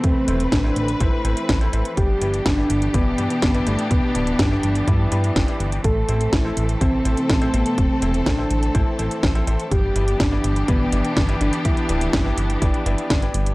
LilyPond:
<<
  \new Staff \with { instrumentName = "Grand piano" } { \time 4/4 \key a \minor \tempo 4 = 124 r8 <c' e' a' c''>16 r8 <c' e' a' c''>16 r8 <c' e' a' c''>8 <c' e' a' c''>8 r16 <c' e' a' c''>16 <c' e' a' c''>16 r16 | r8 <d' e' g' b'>16 r8 <d' e' g' b'>16 r8 <d' e' g' b'>8 <d' e' g' b'>8 r16 <d' e' g' b'>16 <d' e' g' b'>16 r16 | r8 <d' e' g' b'>16 r8 <d' e' g' b'>16 r8 <d' e' g' b'>8 <d' e' g' b'>8. <d' e' g' b'>8 r16 | r8 <c' e' a' c''>16 r8 <c' e' a' c''>16 r8 <c' e' a' c''>8 <c' e' a' c''>8 r16 <c' e' a' c''>16 <c' e' a' c''>16 r16 |
r8 <c' e' a' c''>16 r8 <c' e' a' c''>16 r8 <c' e' a' c''>8 <c' e' a' c''>8 r16 <c' e' a' c''>16 <c' e' a' c''>16 r16 | r8 <d' e' g' b'>16 r8 <d' e' g' b'>16 r8 <d' e' g' b'>8 <d' e' g' b'>8 r16 <d' e' g' b'>16 <d' e' g' b'>16 r16 | r8 <d' e' g' b'>16 r8 <d' e' g' b'>16 r8 <d' e' g' b'>8 <d' e' g' b'>8. <d' e' g' b'>8 r16 | }
  \new Staff \with { instrumentName = "Soft synth lead" } { \time 4/4 \key a \minor c'4 d'4 e'4. r8 | g'4 d'4 b8. b8. a8 | b4 d'4 e'4. r8 | a'4 e'4 c'8. c'8. b8 |
c'4 d'4 e'4. r8 | g'4 d'4 b4 r8 d'8 | e'2. r4 | }
  \new Staff \with { instrumentName = "String section" } { \time 4/4 \key a \minor << { <a c' b'>1 | <b d' g'>1~ | <b d' g'>1 | <a c' a'>1~ |
<a c' a'>1 | <b d' g'>1~ | <b d' g'>1 | } \\ { e1~ | e1~ | e1~ | e1~ |
e1 | e1~ | e1 | } >> }
  \new Staff \with { instrumentName = "Analog synth bass" } { \clef bass \time 4/4 \key a \minor e,,8 e,,8 a,,8 a,,8 a,,8 a,,8 a,,8 a,,8 | g,,8 g,,8 g,,8 g,,8 g,,8 g,,8 g,,8 g,,8 | d,,8 d,,8 g,,8 g,,8 g,8 g,8 g,,8 g,,8 | a,,8 a,,8 a,,8 a,,8 a,,8 a,,8 a,,8 a,,8 |
e,,8 e,,8 a,,8 a,,8 a,,8 a,,8 a,,8 a,,8 | g,,8 g,,8 g,,8 g,,8 g,,8 g,,8 g,,8 g,,8 | d,,8 d,,8 g,,8 g,,8 g,,8 g,,8 g,,8 g,,8 | }
  \new DrumStaff \with { instrumentName = "Drums" } \drummode { \time 4/4 <hh bd>8 hh16 hh16 <hh bd sn>8 hh16 hh16 <hh bd>8 hh16 hh16 <hh bd sn>16 hh16 hh16 hh16 | <hh bd>8 hh16 hh16 <hh bd sn>8 hh16 hh16 <hh bd>8 hh16 hh16 <hh bd sn>16 hh16 hh16 hh16 | <hh bd>8 hh16 hh16 <hh bd sn>8 hh16 hh16 <hh bd>8 hh16 hh16 <hh bd sn>16 hh16 hh16 hh16 | <hh bd>8 hh16 hh16 <hh bd sn>8 hh16 hh16 <hh bd>8 hh16 hh16 <hh bd sn>16 hh16 hh16 hh16 |
<hh bd>8 hh16 hh16 <hh bd sn>8 hh16 hh16 <hh bd>8 hh16 hh16 <hh bd sn>16 hh16 hh16 hh16 | <hh bd>8 hh16 hh16 <hh bd sn>8 hh16 hh16 <hh bd>8 hh16 hh16 <hh bd sn>16 hh16 hh16 hh16 | <hh bd>16 hh16 hh16 hh16 <hh bd sn>8 hh16 hh16 <hh bd>16 hh16 hh16 hh16 <hh bd sn>16 hh16 hh16 hh16 | }
>>